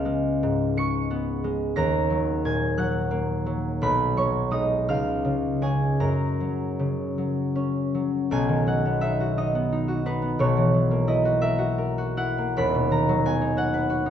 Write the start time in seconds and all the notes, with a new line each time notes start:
Already playing: C#2 B3 D#5 F5 D#6 F6 F#6
0.05 G#3
0.43 G#2
0.77 G#3 C#6 C#7
1.10 B3
1.44 G#3
1.76 D#2 A#5 A#6
2.10 F#3
2.45 A#2 G#5 G#6
2.78 F#3 F#5 F#6
3.11 A#3
3.46 F#3
3.82 B1 B4 B5
4.17 F#3 C#5 C#6
4.51 G#3 D#4 D#5 D#6
4.89 C#2 F5 F6
5.25 C#3
5.61 G#3 C#4 G#4 G#5
6.00 F#2 A#4 A#5
6.40 F#3
6.79 C#3
7.18 F#3
7.56 C#4
7.94 F#3
8.31 B1 B2 G#5
8.49 D#3
8.67 F#3 F#5
8.85 B3
9.01 D#4 E5
9.20 F#4
9.37 D#4 D#5
9.55 B3
9.72 D#4
9.88 F#4
10.06 D#4 B4
10.22 B3
10.39 B1 B2 C#5
10.57 E3
10.74 F#3
10.91 A#3
11.08 E4 D#5
11.25 F#4
11.41 A#4 E5
11.58 F#4
11.78 A#4
11.98 F#4
12.17 E4 F#5
12.38 A#3
12.57 D#1 D#2 B5
12.74 B2
12.91 D#3 A#5
13.09 F#3
13.25 B3 G#5
13.41 D#4
13.57 F#4 F#5
13.74 B4
13.90 F#4
14.06 D#4